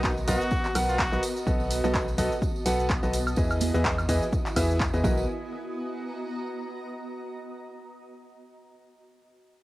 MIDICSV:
0, 0, Header, 1, 6, 480
1, 0, Start_track
1, 0, Key_signature, 5, "major"
1, 0, Tempo, 476190
1, 1480, Time_signature, 4, 2, 24, 8
1, 9708, End_track
2, 0, Start_track
2, 0, Title_t, "Ambient pad"
2, 0, Program_c, 0, 92
2, 0, Note_on_c, 0, 59, 83
2, 0, Note_on_c, 0, 66, 88
2, 0, Note_on_c, 0, 75, 91
2, 0, Note_on_c, 0, 82, 76
2, 1241, Note_off_c, 0, 82, 0
2, 1875, Note_on_c, 0, 81, 85
2, 3401, Note_off_c, 0, 81, 0
2, 3684, Note_on_c, 0, 64, 85
2, 4152, Note_on_c, 0, 80, 69
2, 4175, Note_off_c, 0, 66, 0
2, 5069, Note_off_c, 0, 59, 0
2, 5080, Note_off_c, 0, 75, 0
2, 5080, Note_off_c, 0, 80, 0
2, 5081, Note_off_c, 0, 64, 0
2, 5082, Note_on_c, 0, 59, 76
2, 5160, Note_on_c, 0, 66, 78
2, 5477, Note_on_c, 0, 75, 78
2, 5539, Note_on_c, 0, 82, 76
2, 6959, Note_off_c, 0, 66, 0
2, 6961, Note_off_c, 0, 59, 0
2, 7200, Note_off_c, 0, 75, 0
2, 7200, Note_off_c, 0, 82, 0
2, 9708, End_track
3, 0, Start_track
3, 0, Title_t, "Grand piano"
3, 0, Program_c, 1, 0
3, 0, Note_on_c, 1, 59, 99
3, 0, Note_on_c, 1, 66, 89
3, 0, Note_on_c, 1, 70, 88
3, 0, Note_on_c, 1, 71, 88
3, 0, Note_on_c, 1, 75, 106
3, 124, Note_off_c, 1, 59, 0
3, 124, Note_off_c, 1, 66, 0
3, 124, Note_off_c, 1, 70, 0
3, 124, Note_off_c, 1, 71, 0
3, 124, Note_off_c, 1, 75, 0
3, 280, Note_on_c, 1, 59, 100
3, 280, Note_on_c, 1, 66, 91
3, 280, Note_on_c, 1, 70, 92
3, 280, Note_on_c, 1, 71, 91
3, 280, Note_on_c, 1, 75, 106
3, 417, Note_off_c, 1, 59, 0
3, 417, Note_off_c, 1, 66, 0
3, 417, Note_off_c, 1, 70, 0
3, 417, Note_off_c, 1, 71, 0
3, 417, Note_off_c, 1, 75, 0
3, 759, Note_on_c, 1, 70, 91
3, 760, Note_on_c, 1, 59, 99
3, 760, Note_on_c, 1, 66, 88
3, 760, Note_on_c, 1, 71, 93
3, 760, Note_on_c, 1, 78, 111
3, 961, Note_off_c, 1, 59, 0
3, 961, Note_off_c, 1, 66, 0
3, 961, Note_off_c, 1, 70, 0
3, 961, Note_off_c, 1, 71, 0
3, 961, Note_off_c, 1, 78, 0
3, 1134, Note_on_c, 1, 66, 74
3, 1135, Note_on_c, 1, 59, 84
3, 1135, Note_on_c, 1, 70, 72
3, 1135, Note_on_c, 1, 71, 76
3, 1135, Note_on_c, 1, 75, 90
3, 1227, Note_off_c, 1, 59, 0
3, 1227, Note_off_c, 1, 66, 0
3, 1227, Note_off_c, 1, 70, 0
3, 1227, Note_off_c, 1, 71, 0
3, 1227, Note_off_c, 1, 75, 0
3, 1479, Note_on_c, 1, 59, 80
3, 1479, Note_on_c, 1, 66, 73
3, 1479, Note_on_c, 1, 69, 73
3, 1479, Note_on_c, 1, 71, 72
3, 1479, Note_on_c, 1, 75, 88
3, 1822, Note_off_c, 1, 59, 0
3, 1822, Note_off_c, 1, 69, 0
3, 1823, Note_off_c, 1, 66, 0
3, 1823, Note_off_c, 1, 71, 0
3, 1823, Note_off_c, 1, 75, 0
3, 1855, Note_on_c, 1, 59, 97
3, 1855, Note_on_c, 1, 66, 88
3, 1855, Note_on_c, 1, 69, 91
3, 1855, Note_on_c, 1, 71, 88
3, 1855, Note_on_c, 1, 75, 112
3, 2044, Note_off_c, 1, 66, 0
3, 2044, Note_off_c, 1, 69, 0
3, 2044, Note_off_c, 1, 71, 0
3, 2044, Note_off_c, 1, 75, 0
3, 2045, Note_off_c, 1, 59, 0
3, 2200, Note_on_c, 1, 59, 102
3, 2200, Note_on_c, 1, 66, 90
3, 2200, Note_on_c, 1, 69, 93
3, 2200, Note_on_c, 1, 71, 94
3, 2200, Note_on_c, 1, 75, 113
3, 2337, Note_off_c, 1, 59, 0
3, 2337, Note_off_c, 1, 66, 0
3, 2337, Note_off_c, 1, 69, 0
3, 2337, Note_off_c, 1, 71, 0
3, 2337, Note_off_c, 1, 75, 0
3, 2680, Note_on_c, 1, 59, 97
3, 2680, Note_on_c, 1, 66, 89
3, 2680, Note_on_c, 1, 69, 90
3, 2680, Note_on_c, 1, 71, 96
3, 2680, Note_on_c, 1, 78, 107
3, 2881, Note_off_c, 1, 59, 0
3, 2881, Note_off_c, 1, 66, 0
3, 2881, Note_off_c, 1, 69, 0
3, 2881, Note_off_c, 1, 71, 0
3, 2881, Note_off_c, 1, 78, 0
3, 3054, Note_on_c, 1, 71, 79
3, 3054, Note_on_c, 1, 75, 93
3, 3055, Note_on_c, 1, 59, 79
3, 3055, Note_on_c, 1, 66, 77
3, 3055, Note_on_c, 1, 69, 74
3, 3162, Note_off_c, 1, 59, 0
3, 3162, Note_off_c, 1, 66, 0
3, 3162, Note_off_c, 1, 69, 0
3, 3162, Note_off_c, 1, 71, 0
3, 3162, Note_off_c, 1, 75, 0
3, 3399, Note_on_c, 1, 52, 84
3, 3399, Note_on_c, 1, 64, 73
3, 3399, Note_on_c, 1, 68, 74
3, 3399, Note_on_c, 1, 71, 74
3, 3399, Note_on_c, 1, 75, 92
3, 3742, Note_off_c, 1, 52, 0
3, 3742, Note_off_c, 1, 71, 0
3, 3743, Note_off_c, 1, 64, 0
3, 3743, Note_off_c, 1, 68, 0
3, 3743, Note_off_c, 1, 75, 0
3, 3774, Note_on_c, 1, 52, 97
3, 3774, Note_on_c, 1, 64, 92
3, 3774, Note_on_c, 1, 68, 88
3, 3774, Note_on_c, 1, 71, 92
3, 3774, Note_on_c, 1, 75, 106
3, 3964, Note_off_c, 1, 52, 0
3, 3964, Note_off_c, 1, 64, 0
3, 3964, Note_off_c, 1, 68, 0
3, 3964, Note_off_c, 1, 71, 0
3, 3964, Note_off_c, 1, 75, 0
3, 4119, Note_on_c, 1, 52, 100
3, 4119, Note_on_c, 1, 64, 91
3, 4119, Note_on_c, 1, 68, 89
3, 4119, Note_on_c, 1, 71, 90
3, 4119, Note_on_c, 1, 75, 113
3, 4257, Note_off_c, 1, 52, 0
3, 4257, Note_off_c, 1, 64, 0
3, 4257, Note_off_c, 1, 68, 0
3, 4257, Note_off_c, 1, 71, 0
3, 4257, Note_off_c, 1, 75, 0
3, 4599, Note_on_c, 1, 64, 91
3, 4599, Note_on_c, 1, 68, 90
3, 4599, Note_on_c, 1, 71, 94
3, 4600, Note_on_c, 1, 52, 101
3, 4600, Note_on_c, 1, 76, 114
3, 4801, Note_off_c, 1, 52, 0
3, 4801, Note_off_c, 1, 64, 0
3, 4801, Note_off_c, 1, 68, 0
3, 4801, Note_off_c, 1, 71, 0
3, 4801, Note_off_c, 1, 76, 0
3, 4975, Note_on_c, 1, 52, 83
3, 4975, Note_on_c, 1, 64, 78
3, 4975, Note_on_c, 1, 68, 78
3, 4975, Note_on_c, 1, 71, 75
3, 4975, Note_on_c, 1, 75, 92
3, 5064, Note_off_c, 1, 71, 0
3, 5064, Note_off_c, 1, 75, 0
3, 5079, Note_on_c, 1, 70, 80
3, 5079, Note_on_c, 1, 71, 82
3, 5079, Note_on_c, 1, 75, 95
3, 5080, Note_off_c, 1, 52, 0
3, 5080, Note_off_c, 1, 64, 0
3, 5080, Note_off_c, 1, 68, 0
3, 5080, Note_on_c, 1, 66, 90
3, 5264, Note_off_c, 1, 66, 0
3, 5264, Note_off_c, 1, 70, 0
3, 5264, Note_off_c, 1, 71, 0
3, 5264, Note_off_c, 1, 75, 0
3, 9708, End_track
4, 0, Start_track
4, 0, Title_t, "Trumpet"
4, 0, Program_c, 2, 56
4, 39, Note_on_c, 2, 63, 80
4, 126, Note_off_c, 2, 63, 0
4, 281, Note_on_c, 2, 66, 97
4, 760, Note_off_c, 2, 66, 0
4, 894, Note_on_c, 2, 66, 94
4, 1240, Note_off_c, 2, 66, 0
4, 9708, End_track
5, 0, Start_track
5, 0, Title_t, "FM bass"
5, 0, Program_c, 3, 39
5, 0, Note_on_c, 3, 35, 95
5, 260, Note_off_c, 3, 35, 0
5, 280, Note_on_c, 3, 35, 103
5, 391, Note_off_c, 3, 35, 0
5, 761, Note_on_c, 3, 35, 99
5, 1109, Note_off_c, 3, 35, 0
5, 1136, Note_on_c, 3, 35, 92
5, 1207, Note_off_c, 3, 35, 0
5, 1480, Note_on_c, 3, 35, 101
5, 1828, Note_off_c, 3, 35, 0
5, 1856, Note_on_c, 3, 35, 94
5, 2179, Note_off_c, 3, 35, 0
5, 2200, Note_on_c, 3, 35, 100
5, 2310, Note_off_c, 3, 35, 0
5, 2681, Note_on_c, 3, 35, 99
5, 3029, Note_off_c, 3, 35, 0
5, 3056, Note_on_c, 3, 35, 94
5, 3380, Note_off_c, 3, 35, 0
5, 3400, Note_on_c, 3, 40, 98
5, 3748, Note_off_c, 3, 40, 0
5, 3777, Note_on_c, 3, 40, 96
5, 4100, Note_off_c, 3, 40, 0
5, 4120, Note_on_c, 3, 40, 101
5, 4230, Note_off_c, 3, 40, 0
5, 4600, Note_on_c, 3, 40, 102
5, 4948, Note_off_c, 3, 40, 0
5, 4976, Note_on_c, 3, 40, 97
5, 5074, Note_off_c, 3, 40, 0
5, 5081, Note_on_c, 3, 35, 95
5, 5304, Note_off_c, 3, 35, 0
5, 9708, End_track
6, 0, Start_track
6, 0, Title_t, "Drums"
6, 33, Note_on_c, 9, 54, 52
6, 40, Note_on_c, 9, 36, 109
6, 41, Note_on_c, 9, 39, 120
6, 43, Note_on_c, 9, 82, 46
6, 134, Note_off_c, 9, 54, 0
6, 141, Note_off_c, 9, 36, 0
6, 142, Note_off_c, 9, 39, 0
6, 143, Note_off_c, 9, 82, 0
6, 177, Note_on_c, 9, 54, 35
6, 178, Note_on_c, 9, 82, 32
6, 278, Note_off_c, 9, 54, 0
6, 279, Note_off_c, 9, 82, 0
6, 280, Note_on_c, 9, 36, 57
6, 280, Note_on_c, 9, 46, 91
6, 283, Note_on_c, 9, 54, 100
6, 283, Note_on_c, 9, 82, 77
6, 381, Note_off_c, 9, 36, 0
6, 381, Note_off_c, 9, 46, 0
6, 383, Note_off_c, 9, 82, 0
6, 384, Note_off_c, 9, 54, 0
6, 411, Note_on_c, 9, 54, 38
6, 418, Note_on_c, 9, 82, 35
6, 512, Note_off_c, 9, 54, 0
6, 512, Note_on_c, 9, 54, 47
6, 519, Note_off_c, 9, 82, 0
6, 520, Note_on_c, 9, 36, 113
6, 523, Note_on_c, 9, 82, 46
6, 613, Note_off_c, 9, 54, 0
6, 621, Note_off_c, 9, 36, 0
6, 624, Note_off_c, 9, 82, 0
6, 650, Note_on_c, 9, 54, 35
6, 657, Note_on_c, 9, 39, 37
6, 751, Note_off_c, 9, 54, 0
6, 757, Note_off_c, 9, 39, 0
6, 760, Note_on_c, 9, 46, 104
6, 760, Note_on_c, 9, 54, 93
6, 760, Note_on_c, 9, 76, 70
6, 763, Note_on_c, 9, 82, 77
6, 860, Note_off_c, 9, 46, 0
6, 860, Note_off_c, 9, 76, 0
6, 861, Note_off_c, 9, 54, 0
6, 863, Note_off_c, 9, 82, 0
6, 896, Note_on_c, 9, 54, 39
6, 899, Note_on_c, 9, 82, 35
6, 997, Note_off_c, 9, 54, 0
6, 1000, Note_off_c, 9, 82, 0
6, 1000, Note_on_c, 9, 36, 115
6, 1002, Note_on_c, 9, 39, 119
6, 1002, Note_on_c, 9, 54, 50
6, 1004, Note_on_c, 9, 82, 46
6, 1101, Note_off_c, 9, 36, 0
6, 1103, Note_off_c, 9, 39, 0
6, 1103, Note_off_c, 9, 54, 0
6, 1104, Note_off_c, 9, 82, 0
6, 1139, Note_on_c, 9, 54, 33
6, 1139, Note_on_c, 9, 82, 30
6, 1240, Note_off_c, 9, 54, 0
6, 1240, Note_off_c, 9, 82, 0
6, 1240, Note_on_c, 9, 46, 93
6, 1243, Note_on_c, 9, 82, 82
6, 1246, Note_on_c, 9, 54, 96
6, 1341, Note_off_c, 9, 46, 0
6, 1344, Note_off_c, 9, 82, 0
6, 1347, Note_off_c, 9, 54, 0
6, 1375, Note_on_c, 9, 54, 40
6, 1379, Note_on_c, 9, 82, 32
6, 1476, Note_off_c, 9, 54, 0
6, 1480, Note_off_c, 9, 82, 0
6, 1480, Note_on_c, 9, 36, 118
6, 1483, Note_on_c, 9, 54, 53
6, 1483, Note_on_c, 9, 82, 46
6, 1581, Note_off_c, 9, 36, 0
6, 1584, Note_off_c, 9, 54, 0
6, 1584, Note_off_c, 9, 82, 0
6, 1611, Note_on_c, 9, 54, 36
6, 1712, Note_off_c, 9, 54, 0
6, 1718, Note_on_c, 9, 54, 81
6, 1721, Note_on_c, 9, 46, 98
6, 1724, Note_on_c, 9, 82, 80
6, 1819, Note_off_c, 9, 54, 0
6, 1821, Note_off_c, 9, 46, 0
6, 1824, Note_off_c, 9, 82, 0
6, 1858, Note_on_c, 9, 63, 67
6, 1859, Note_on_c, 9, 82, 36
6, 1861, Note_on_c, 9, 54, 41
6, 1955, Note_off_c, 9, 54, 0
6, 1955, Note_on_c, 9, 54, 51
6, 1959, Note_off_c, 9, 63, 0
6, 1960, Note_off_c, 9, 82, 0
6, 1960, Note_on_c, 9, 36, 113
6, 1961, Note_on_c, 9, 39, 122
6, 1963, Note_on_c, 9, 82, 48
6, 2055, Note_off_c, 9, 54, 0
6, 2061, Note_off_c, 9, 36, 0
6, 2062, Note_off_c, 9, 39, 0
6, 2064, Note_off_c, 9, 82, 0
6, 2098, Note_on_c, 9, 54, 36
6, 2099, Note_on_c, 9, 82, 34
6, 2199, Note_off_c, 9, 54, 0
6, 2200, Note_off_c, 9, 82, 0
6, 2200, Note_on_c, 9, 36, 58
6, 2200, Note_on_c, 9, 46, 88
6, 2201, Note_on_c, 9, 54, 91
6, 2203, Note_on_c, 9, 82, 79
6, 2301, Note_off_c, 9, 36, 0
6, 2301, Note_off_c, 9, 46, 0
6, 2302, Note_off_c, 9, 54, 0
6, 2304, Note_off_c, 9, 82, 0
6, 2336, Note_on_c, 9, 54, 36
6, 2339, Note_on_c, 9, 82, 37
6, 2437, Note_off_c, 9, 54, 0
6, 2439, Note_off_c, 9, 82, 0
6, 2440, Note_on_c, 9, 36, 111
6, 2443, Note_on_c, 9, 82, 47
6, 2450, Note_on_c, 9, 54, 47
6, 2541, Note_off_c, 9, 36, 0
6, 2544, Note_off_c, 9, 82, 0
6, 2550, Note_off_c, 9, 54, 0
6, 2579, Note_on_c, 9, 54, 34
6, 2678, Note_off_c, 9, 54, 0
6, 2678, Note_on_c, 9, 54, 83
6, 2680, Note_on_c, 9, 46, 102
6, 2683, Note_on_c, 9, 82, 80
6, 2779, Note_off_c, 9, 54, 0
6, 2781, Note_off_c, 9, 46, 0
6, 2784, Note_off_c, 9, 82, 0
6, 2818, Note_on_c, 9, 82, 36
6, 2823, Note_on_c, 9, 54, 33
6, 2919, Note_off_c, 9, 82, 0
6, 2920, Note_off_c, 9, 54, 0
6, 2920, Note_on_c, 9, 36, 123
6, 2920, Note_on_c, 9, 54, 46
6, 2921, Note_on_c, 9, 39, 124
6, 2923, Note_on_c, 9, 82, 47
6, 3021, Note_off_c, 9, 36, 0
6, 3021, Note_off_c, 9, 54, 0
6, 3022, Note_off_c, 9, 39, 0
6, 3024, Note_off_c, 9, 82, 0
6, 3053, Note_on_c, 9, 54, 36
6, 3058, Note_on_c, 9, 82, 32
6, 3154, Note_off_c, 9, 54, 0
6, 3159, Note_off_c, 9, 82, 0
6, 3159, Note_on_c, 9, 54, 85
6, 3160, Note_on_c, 9, 46, 94
6, 3163, Note_on_c, 9, 82, 86
6, 3260, Note_off_c, 9, 46, 0
6, 3260, Note_off_c, 9, 54, 0
6, 3263, Note_off_c, 9, 82, 0
6, 3295, Note_on_c, 9, 76, 85
6, 3298, Note_on_c, 9, 54, 34
6, 3298, Note_on_c, 9, 82, 35
6, 3391, Note_off_c, 9, 54, 0
6, 3391, Note_on_c, 9, 54, 55
6, 3396, Note_off_c, 9, 76, 0
6, 3399, Note_off_c, 9, 82, 0
6, 3400, Note_on_c, 9, 36, 116
6, 3403, Note_on_c, 9, 82, 47
6, 3492, Note_off_c, 9, 54, 0
6, 3501, Note_off_c, 9, 36, 0
6, 3503, Note_off_c, 9, 82, 0
6, 3530, Note_on_c, 9, 54, 36
6, 3535, Note_on_c, 9, 76, 93
6, 3538, Note_on_c, 9, 82, 34
6, 3631, Note_off_c, 9, 54, 0
6, 3636, Note_off_c, 9, 76, 0
6, 3636, Note_on_c, 9, 54, 91
6, 3639, Note_off_c, 9, 82, 0
6, 3640, Note_on_c, 9, 46, 99
6, 3643, Note_on_c, 9, 82, 83
6, 3644, Note_on_c, 9, 63, 89
6, 3737, Note_off_c, 9, 54, 0
6, 3741, Note_off_c, 9, 46, 0
6, 3744, Note_off_c, 9, 63, 0
6, 3744, Note_off_c, 9, 82, 0
6, 3777, Note_on_c, 9, 63, 69
6, 3778, Note_on_c, 9, 82, 35
6, 3780, Note_on_c, 9, 54, 37
6, 3877, Note_off_c, 9, 54, 0
6, 3877, Note_on_c, 9, 54, 49
6, 3878, Note_off_c, 9, 63, 0
6, 3879, Note_off_c, 9, 82, 0
6, 3880, Note_on_c, 9, 36, 116
6, 3882, Note_on_c, 9, 39, 123
6, 3883, Note_on_c, 9, 82, 50
6, 3978, Note_off_c, 9, 54, 0
6, 3981, Note_off_c, 9, 36, 0
6, 3983, Note_off_c, 9, 39, 0
6, 3984, Note_off_c, 9, 82, 0
6, 4016, Note_on_c, 9, 76, 92
6, 4017, Note_on_c, 9, 54, 35
6, 4019, Note_on_c, 9, 82, 35
6, 4116, Note_off_c, 9, 76, 0
6, 4118, Note_off_c, 9, 54, 0
6, 4119, Note_off_c, 9, 82, 0
6, 4120, Note_on_c, 9, 36, 58
6, 4120, Note_on_c, 9, 46, 85
6, 4122, Note_on_c, 9, 54, 95
6, 4123, Note_on_c, 9, 82, 82
6, 4221, Note_off_c, 9, 36, 0
6, 4221, Note_off_c, 9, 46, 0
6, 4223, Note_off_c, 9, 54, 0
6, 4224, Note_off_c, 9, 82, 0
6, 4258, Note_on_c, 9, 54, 38
6, 4258, Note_on_c, 9, 82, 37
6, 4359, Note_off_c, 9, 54, 0
6, 4359, Note_off_c, 9, 82, 0
6, 4360, Note_on_c, 9, 36, 120
6, 4361, Note_on_c, 9, 54, 54
6, 4363, Note_on_c, 9, 82, 48
6, 4461, Note_off_c, 9, 36, 0
6, 4462, Note_off_c, 9, 54, 0
6, 4463, Note_off_c, 9, 82, 0
6, 4496, Note_on_c, 9, 39, 39
6, 4496, Note_on_c, 9, 54, 38
6, 4498, Note_on_c, 9, 82, 35
6, 4596, Note_off_c, 9, 54, 0
6, 4597, Note_off_c, 9, 39, 0
6, 4599, Note_off_c, 9, 82, 0
6, 4600, Note_on_c, 9, 36, 64
6, 4600, Note_on_c, 9, 46, 105
6, 4600, Note_on_c, 9, 76, 68
6, 4603, Note_on_c, 9, 82, 83
6, 4604, Note_on_c, 9, 54, 83
6, 4701, Note_off_c, 9, 36, 0
6, 4701, Note_off_c, 9, 46, 0
6, 4701, Note_off_c, 9, 76, 0
6, 4704, Note_off_c, 9, 82, 0
6, 4705, Note_off_c, 9, 54, 0
6, 4732, Note_on_c, 9, 54, 39
6, 4739, Note_on_c, 9, 82, 36
6, 4833, Note_off_c, 9, 54, 0
6, 4839, Note_off_c, 9, 82, 0
6, 4840, Note_on_c, 9, 36, 117
6, 4841, Note_on_c, 9, 54, 49
6, 4842, Note_on_c, 9, 39, 127
6, 4844, Note_on_c, 9, 82, 52
6, 4941, Note_off_c, 9, 36, 0
6, 4942, Note_off_c, 9, 54, 0
6, 4943, Note_off_c, 9, 39, 0
6, 4944, Note_off_c, 9, 82, 0
6, 4973, Note_on_c, 9, 54, 38
6, 4978, Note_on_c, 9, 82, 34
6, 5074, Note_off_c, 9, 54, 0
6, 5079, Note_off_c, 9, 82, 0
6, 5080, Note_on_c, 9, 36, 122
6, 5080, Note_on_c, 9, 63, 62
6, 5084, Note_on_c, 9, 54, 95
6, 5181, Note_off_c, 9, 36, 0
6, 5181, Note_off_c, 9, 63, 0
6, 5185, Note_off_c, 9, 54, 0
6, 5215, Note_on_c, 9, 54, 42
6, 5315, Note_off_c, 9, 54, 0
6, 9708, End_track
0, 0, End_of_file